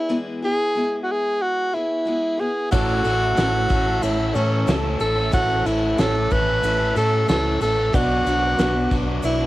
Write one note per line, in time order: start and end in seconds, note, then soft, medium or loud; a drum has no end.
0.00 0.17 E4 loud
0.09 0.43 E3 medium
0.09 0.43 G#3 medium
0.09 0.43 B3 medium
0.09 0.43 E4 medium
0.09 0.41 G#4 medium
0.42 0.75 B3 medium
0.42 0.76 E4 medium
0.42 0.76 G#4 medium
0.42 0.98 G#4 loud
0.75 1.74 G#3 medium
0.75 1.74 B3 medium
0.75 1.74 E4 medium
0.75 1.72 G#4 medium
1.03 1.13 F#4 medium
1.12 1.43 G#4 loud
1.42 1.76 F#4 medium
1.73 2.06 B3 soft
1.73 2.42 E4 loud
1.73 2.06 E4 medium
1.73 2.06 G#4 medium
2.05 2.39 G#3 medium
2.05 2.40 B3 medium
2.05 2.38 E4 medium
2.05 2.36 G#4 medium
2.37 2.72 B3 soft
2.37 2.71 E4 soft
2.37 2.71 G#4 medium
2.71 3.00 A1 loud
2.71 3.36 A2 medium
2.71 3.04 E3 medium
2.71 3.05 A3 medium
2.71 3.31 C#4 loud
2.71 3.06 C#4 medium
2.71 3.31 E4 medium
2.71 3.04 E4 medium
2.71 4.04 F#4 loud
2.71 3.31 A4 medium
2.71 3.07 A4 loud
2.71 7.89 C#5 medium
2.71 3.31 C#5 loud
2.71 7.89 E5 medium
2.71 7.89 A5 medium
2.71 5.30 E6 medium
2.71 kick loud
2.71 crash loud
2.71 shaker loud
2.89 shaker soft
3.04 3.33 A1 medium
3.04 3.37 E3 medium
3.04 3.38 A3 medium
3.04 3.38 C#4 medium
3.04 3.37 E4 medium
3.04 3.39 A4 medium
3.04 ride medium
3.04 shaker medium
3.36 3.65 A1 medium
3.36 4.67 A2 loud
3.36 3.54 E3 loud
3.36 3.54 A3 loud
3.36 3.96 C#4 medium
3.36 3.54 C#4 medium
3.36 3.96 E4 medium
3.36 4.34 E4 medium
3.36 3.96 A4 medium
3.36 3.54 A4 medium
3.36 3.96 B4 medium
3.36 snare loud
3.36 ride medium
3.36 shaker loud
3.54 muted overdriven electric guitar stroke soft
3.69 3.98 A1 medium
3.69 4.19 E3 medium
3.69 3.88 A3 medium
3.69 3.87 C#4 medium
3.69 3.85 A4 medium
3.69 kick medium
3.69 ride medium
3.69 shaker medium
3.86 4.20 A3 medium
3.86 4.19 C#4 medium
3.86 4.17 A4 medium
4.02 4.31 A1 medium
4.02 4.61 C#4 medium
4.02 4.36 E4 loud
4.02 4.61 E4 medium
4.02 4.61 A4 medium
4.02 4.62 C#5 medium
4.02 ride loud
4.02 shaker loud
4.18 4.35 A3 medium
4.18 4.35 C#4 medium
4.18 4.37 A4 medium
4.33 4.63 A2 medium
4.33 4.67 E3 medium
4.33 4.68 A3 medium
4.33 4.73 C#4 medium
4.33 4.69 C#4 medium
4.33 4.67 E4 soft
4.33 4.67 A4 medium
4.33 ride medium
4.33 shaker medium
4.38 4.69 A4 medium
4.67 4.95 C#2 medium
4.67 5.17 A2 medium
4.67 4.98 E3 loud
4.67 4.85 A3 loud
4.67 5.26 C#4 medium
4.67 4.83 C#4 loud
4.67 5.26 E4 medium
4.67 4.99 E4 medium
4.67 5.26 A4 medium
4.67 4.82 A4 loud
4.67 5.27 E5 medium
4.67 snare loud
4.67 ride loud
4.67 shaker medium
4.83 4.99 A3 medium
4.83 5.01 C#4 medium
4.83 5.01 A4 medium
5.00 5.28 A1 medium
5.00 5.33 E3 medium
5.00 5.17 A3 medium
5.00 5.16 C#4 medium
5.00 5.31 E4 medium
5.00 5.31 A4 loud
5.00 5.14 A4 medium
5.00 ride medium
5.00 shaker medium
5.16 5.33 A3 medium
5.16 5.34 C#4 medium
5.16 5.34 A4 medium
5.32 5.61 A1 medium
5.32 5.97 A2 medium
5.32 5.65 E3 loud
5.32 5.65 A3 medium
5.32 5.91 C#4 loud
5.32 5.66 C#4 loud
5.32 5.64 E4 medium
5.32 5.92 E4 loud
5.32 5.68 F#4 loud
5.32 5.92 A4 loud
5.32 5.67 A4 loud
5.32 5.92 C#5 loud
5.32 7.91 F#6 medium
5.32 kick loud
5.32 ride loud
5.32 shaker medium
5.49 shaker soft
5.64 5.93 A1 medium
5.64 5.98 E3 medium
5.64 5.99 A3 medium
5.64 5.99 C#4 medium
5.64 5.98 E4 medium
5.64 6.01 E4 loud
5.64 5.97 A4 medium
5.64 ride medium
5.64 shaker medium
5.69 6.00 A4 medium
5.98 6.26 A1 medium
5.98 6.47 A2 medium
5.98 6.15 E3 loud
5.98 6.15 A3 medium
5.98 6.57 C#4 medium
5.98 6.15 C#4 loud
5.98 6.57 E4 medium
5.98 6.95 E4 medium
5.98 6.57 A4 medium
5.98 6.33 A4 loud
5.98 6.15 A4 medium
5.98 6.57 C#5 medium
5.98 snare loud
5.98 ride medium
5.98 shaker loud
6.16 muted overdriven electric guitar stroke medium
6.30 6.59 A1 loud
6.30 6.80 E3 medium
6.30 6.49 A3 medium
6.30 6.47 C#4 loud
6.30 6.46 A4 medium
6.30 6.96 B4 loud
6.30 kick medium
6.30 ride medium
6.30 shaker medium
6.47 6.80 A3 medium
6.47 6.79 C#4 medium
6.47 6.77 A4 medium
6.63 6.91 A1 medium
6.63 7.22 C#4 medium
6.63 7.22 E4 medium
6.63 7.22 A4 medium
6.63 7.22 E5 medium
6.63 ride loud
6.63 shaker loud
6.78 6.95 A3 medium
6.78 6.95 C#4 medium
6.78 6.97 A4 medium
6.95 7.24 A2 medium
6.95 7.27 E3 medium
6.95 7.28 A3 medium
6.95 7.28 C#4 medium
6.95 7.28 E4 medium
6.95 7.27 A4 loud
6.95 7.29 A4 medium
6.95 ride medium
6.95 shaker medium
7.27 7.56 C#2 medium
7.27 7.77 A2 loud
7.27 7.60 E3 loud
7.27 7.46 A3 loud
7.27 7.87 C#4 medium
7.27 7.44 C#4 loud
7.27 7.87 E4 medium
7.27 7.60 E4 medium
7.27 7.59 A4 loud
7.27 7.87 A4 medium
7.27 7.43 A4 loud
7.27 7.87 B4 medium
7.27 snare loud
7.27 ride loud
7.27 shaker medium
7.44 7.61 A3 medium
7.44 7.61 C#4 medium
7.44 7.63 A4 medium
7.60 7.88 A1 medium
7.60 7.91 E3 medium
7.60 7.78 A3 medium
7.60 7.77 C#4 medium
7.60 7.93 E4 medium
7.60 7.93 A4 medium
7.60 7.96 A4 loud
7.60 ride medium
7.60 shaker medium
7.64 7.76 A4 medium
7.77 7.93 A3 medium
7.77 7.92 C#4 medium
7.77 7.91 A4 medium
7.93 8.21 B1 loud
7.93 8.57 B2 medium
7.93 8.26 F#3 medium
7.93 8.26 B3 loud
7.93 8.52 D4 loud
7.93 8.28 D4 medium
7.93 8.52 F#4 medium
7.93 8.97 F#4 loud
7.93 8.28 F#4 loud
7.93 9.46 B4 medium
7.93 8.52 B4 medium
7.93 8.24 B4 medium
7.93 9.46 D5 medium
7.93 8.52 D5 loud
7.93 9.46 F#5 medium
7.93 9.46 D6 medium
7.93 kick loud
7.93 crash loud
7.93 shaker loud
8.10 shaker soft
8.25 8.53 B1 medium
8.25 8.58 F#3 medium
8.25 8.58 B3 medium
8.25 8.60 D4 medium
8.25 8.60 F#4 medium
8.25 8.58 B4 medium
8.25 ride medium
8.25 shaker medium
8.58 8.86 B1 loud
8.58 9.07 B2 medium
8.58 8.75 F#3 loud
8.58 8.74 B3 loud
8.58 9.17 D4 medium
8.58 8.75 D4 loud
8.58 9.17 F#4 medium
8.58 8.75 F#4 loud
8.58 9.17 B4 medium
8.58 9.46 B4 medium
8.58 9.17 D5 medium
8.58 snare loud
8.58 ride loud
8.58 shaker loud
8.75 muted overdriven electric guitar stroke medium
8.91 9.19 B1 loud
8.91 9.46 F#3 medium
8.91 9.08 B3 medium
8.91 9.07 D4 medium
8.91 9.06 F#4 medium
8.91 kick medium
8.91 ride medium
8.91 shaker medium
9.06 9.40 B3 medium
9.06 9.40 D4 medium
9.06 9.39 F#4 medium
9.23 9.46 B1 loud
9.23 9.46 D4 medium
9.23 9.46 E4 medium
9.23 9.46 F#4 medium
9.23 9.46 B4 medium
9.23 9.46 D5 medium
9.23 ride loud
9.23 shaker loud
9.39 9.46 B3 medium
9.39 9.46 D4 medium
9.39 9.46 F#4 medium